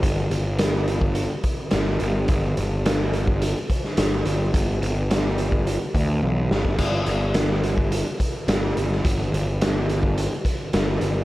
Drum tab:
CC |----------------|----------------|----------------|x---------------|
HH |x-x-x-x-x-x-x-x-|x-x-x-x-x-x-x-x-|x-x-x-x-x-x-----|x-x-x-x-x-x-x-x-|
SD |----o-------o---|----o------oo---|----o---------o-|----o-------o--o|
T1 |----------------|----------------|------------o---|----------------|
BD |o------o--o-----|o------o--o-----|o------o--o----o|o------o--o-----|

CC |----------------|
HH |x-x-x-x-x-x-x-x-|
SD |----o-------o---|
T1 |----------------|
BD |o------o--o-----|